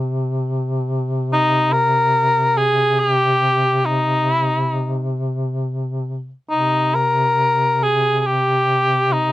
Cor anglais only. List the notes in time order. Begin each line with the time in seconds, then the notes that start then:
1.33 D#4
1.72 A#4
2.58 G#4
2.99 G4
3.85 D#4
4.32 E4
4.44 D#4
4.58 E4
4.70 D#4
6.50 D#4
6.95 A#4
7.83 G#4
8.19 G#4
8.26 G4
9.12 D#4